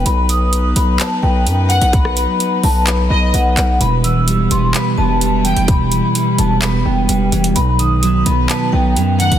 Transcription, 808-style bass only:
X:1
M:4/4
L:1/16
Q:1/4=128
K:Em
V:1 name="808-style bass" clef=bass
B,,,6 B,,,2 z2 B,,,2 F,,3 B,,,- | B,,,3 z3 B,,,4 B,,,2 B,,,2 B,,,2 | E,,,6 E,,,2 z2 E,,,4- E,,, E,,,- | E,,,3 z3 E,,,4 E,,,2 E,,,2 E,,,2 |
B,,,6 B,,,2 z2 B,,,2 F,,3 B,,, |]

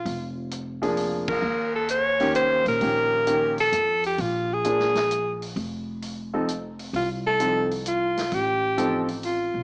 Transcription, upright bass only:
X:1
M:3/4
L:1/8
Q:"Swing" 1/4=131
K:Fmix
V:1 name="Upright bass" clef=bass
F,,,6 | E,,4- E,, B,, | B,,,4 F,,2 | B,,,6 |
F,,,6 | C,,6 | A,,,4- A,,, _C,, |]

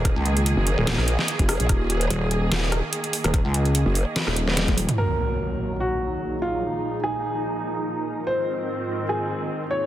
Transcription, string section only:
X:1
M:4/4
L:1/8
Q:"Swing 16ths" 1/4=146
K:Ebm
V:1 name="String section" clef=bass
[E,B,A]8- | [E,B,A]8- | [E,B,A]8 | [K:Ebdor] [E,,B,,G,]8 |
[F,E]8 | [A,,E,C]8 |]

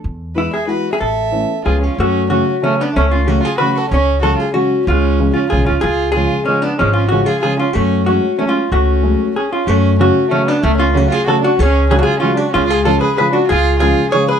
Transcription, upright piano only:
X:1
M:3/4
L:1/8
Q:1/4=187
K:A
V:1 name="Upright piano" clef=bass
z2 [E,G,B,E] z [E,G,B,E] z | z2 [E,A,B,C] z [^E,G,B,C] z | [K:F#m] z2 [C,F,A,C] z [C,F,A,C] z | z2 [C,F,A,C] z [C,F,A,C] z |
z2 [C,F,G,C] z [C,F,G,C] z | z2 [C,^E,G,C] z [C,E,G,C] z | z2 [C,^E,G,C] z [C,E,G,C] z | z2 [C,^E,G,C] z [C,E,G,C] z |
z2 [F,G,A,C] z [F,G,A,C] z | z2 [F,G,A,C] z3 | z2 [C,F,A,CF] z [C,F,A,CF] z | z2 [C,F,A,CF] z [C,F,A,CF] z |
z2 [C,F,G,CF] z [C,F,G,CF] z | z2 [C,^E,G,C^E] z [C,E,G,CE] z | z2 [C,^E,G,C^E] z [C,E,G,CE] z |]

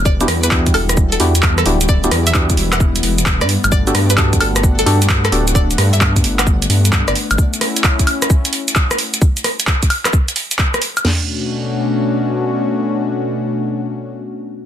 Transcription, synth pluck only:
X:1
M:4/4
L:1/16
Q:"Swing 16ths" 1/4=131
K:Bm
V:1 name="Synth pluck"
d z2 B z2 A z2 A2 z2 A z2 | d z2 e2 z2 f z4 z d z2 | d z2 B z2 A z2 A2 z2 A z2 | d z2 e2 z2 f z4 z d z2 |
z16 | z16 | z16 | z16 |]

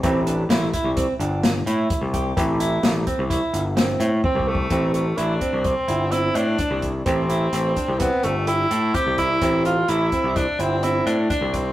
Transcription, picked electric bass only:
X:1
M:5/4
L:1/16
Q:1/4=128
K:Am
V:1 name="Picked electric bass" clef=bass
A,,,4 A,,,2 z C,,2 z G,,,4 A,,2 z C,,3 | A,,,4 A,,,2 z C,,2 z G,,,4 A,,2 z C,,3 | A,,,4 A,,,2 z C,,2 z G,,,4 A,,2 z C,,3 | A,,,4 A,,,2 z C,,2 z G,,,4 A,,2 z C,,3 |
A,,,4 A,,,2 z C,,2 z G,,,4 A,,2 z C,,3 |]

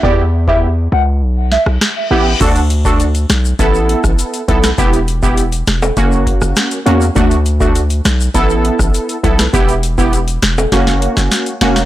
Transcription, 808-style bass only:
X:1
M:4/4
L:1/16
Q:1/4=101
K:Edor
V:1 name="808-style bass" clef=bass
E,,6 C,,2 B,,,3 B,,, z2 A,,,2 | D,,6 B,,,2 A,,,3 A,,, z2 B,,,2 | E,,,6 E,,,2 F,,,3 F,,, z2 E,,2 | D,,6 B,,,2 A,,,3 A,,, z2 B,,,2 |
E,,,6 E,,,2 F,,,3 F,,, z2 E,,,2 |]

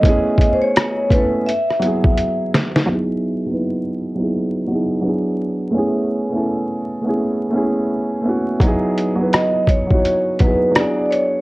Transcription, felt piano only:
X:1
M:4/4
L:1/16
Q:"Swing 16ths" 1/4=84
K:E
V:1 name="Felt piano"
[A,B,CEG]4- [A,B,CEG] z [A,B,CEA]2 z2 [F,B,EG]4- [F,B,EG] z | [F,B,DEG]2 z [F,B,DEB]3 z [F,B,DEG]2 z [F,B,DEG]2 [F,B,=DEG]3 z | [A,B,CEG]2 z [A,B,CEA]3 z [A,B,CEG]2 z [A,B,CEG]3 z [A,B,CEF]2 | [F,B,DEG]2 z [F,B,DEB]3 z [F,B,DEF]2 z [F,B,DEG]2 [F,B,=DEG]3 z |]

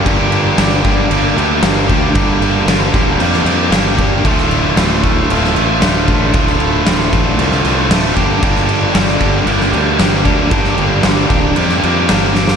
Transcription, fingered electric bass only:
X:1
M:4/4
L:1/8
Q:1/4=115
K:Gdor
V:1 name="Fingered electric bass" clef=bass
G,,,2 G,,, G,,, G,,, D,, G,,, D,, | G,,, G,,, G,,, D,,, F,, F,, G,,,2 | D,,,2 D,,, D,,, D,,, A,,, D,,, A,,, | D,,, D,,, D,,, A,,, C,, C,, D,,, G,,, |
G,,,2 G,,, G,,, G,,, D,, G,,, D,, | G,,, G,,, G,,, D,,, F,, F,, G,,,2 |]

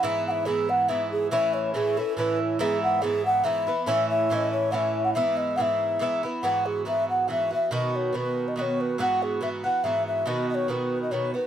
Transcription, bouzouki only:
X:1
M:3/4
L:1/8
Q:"Swing" 1/4=141
K:E
V:1 name="Bouzouki"
[G,,E,B,E]2 [G,,E,B,E]2 [G,,E,B,E]2 | [A,,E,CE]2 [A,,E,CE] [E,CE] [A,,E,CE]2 | [G,,E,B,E]2 [G,,E,B,E]2 [G,,E,B,E] [E,B,E] | [A,,E,CE]2 [A,,E,CE]2 [A,,E,CE]2 |
[G,,E,B,E]2 [G,,E,B,E]2 [G,,E,B,E] [E,B,E] | [G,,E,B,F]2 [G,,E,B,F]2 [G,,E,B,F] [E,B,F] | [B,,D,B,F]2 [B,,D,B,F]2 [B,,D,B,F]2 | [G,,E,B,F]2 [G,,E,B,F] [E,B,F] [G,,E,B,F]2 |
[B,,D,B,F]2 [B,,D,B,F]2 [B,,D,B,F] [D,B,F] |]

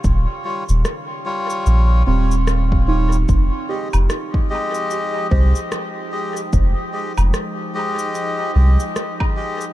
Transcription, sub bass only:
X:1
M:4/4
L:1/16
Q:"Swing 16ths" 1/4=74
K:Fm
V:1 name="Sub bass" clef=bass
E,,, z2 E,,, z4 B,,,2 E,,,6 | F,,, z2 F,,, z6 C,, z4 z | F,,, z2 F,,, z6 C,, z4 z |]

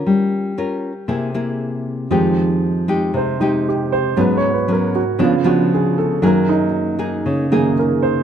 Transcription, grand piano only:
X:1
M:4/4
L:1/8
Q:1/4=117
K:Fm
V:1 name="Grand piano"
z8 | z4 c E G c | (3_c d c B _G F G A =A | B E z3 A B c |]
V:2 name="Grand piano" clef=bass
z8 | [F,,E,A,]8 | [A,,_G,_C]3 z [D,F,C]4 | [_G,,E,B,]4- [G,,E,B,] [G,,E,B,] z2 |]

